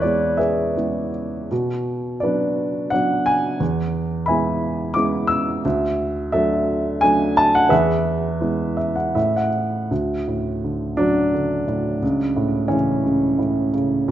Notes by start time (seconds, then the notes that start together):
Already playing: E2 E4 G#4 B4 C#5
0.02 G#3 B3 E4 D5
0.37 G#4 B4 E5
0.76 G#3 B3 E4
1.51 B2
2.20 F#3 B3 F#4 B4 D5
2.24 D4
2.90 F#3 B3 D4 F#5
3.26 G#5
3.60 E2
4.26 G#3 B3 E5 G#5 B5
4.30 E4
4.94 G#3 B3 E4 D6
5.27 E6
5.65 D2
6.32 F#3 A3 D4 A4 E5
7.01 F#3 A3 D4 G#5
7.37 A5
7.55 F#5
7.69 E2 G#4 B4 E5
8.41 G#3 B3 E4
8.77 E5
8.96 F#5
9.15 A2 E5
9.36 F#5
9.91 D2
10.28 A2
10.64 D3
10.97 F#3 D4
11.34 D3
11.67 A2
12.02 C#2
12.36 A2
12.68 C#3 E3 C#4
13.04 C#2
13.38 A2
13.73 C#3